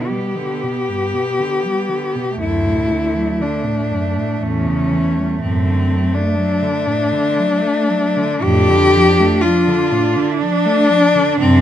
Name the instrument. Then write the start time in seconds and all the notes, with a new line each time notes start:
cello
Already playing: B2 D3 B3
0.07 G3 G4
0.36 D3
0.63 B2
0.89 G2
1.14 B2
1.39 D3
1.65 G3
1.89 D3
2.15 B2
2.38 D2 F#2 A3 E4
2.66 A2
2.91 D3
3.15 F#3
3.40 D3 D4
3.65 A2
3.91 F#2
4.17 A2
4.42 E2 A2 C#4
4.66 C#3
4.91 E3
5.17 G3
5.40 F#2 A2 C4
5.66 D3
5.91 F#3
6.14 A3 D4
6.38 F#3
6.63 D3
6.87 A2
7.12 D3
7.37 F#3
7.61 A3
7.89 F#3
8.17 D3
8.42 F2 A2 D4 G4
8.69 D3
8.94 F3
9.19 A3
9.41 F3 F4
9.68 D3
9.92 A2
10.16 D3
10.31 E4
10.38 F3 D4
10.65 A3
10.89 F3
11.15 D3
11.40 F#2 C3 C4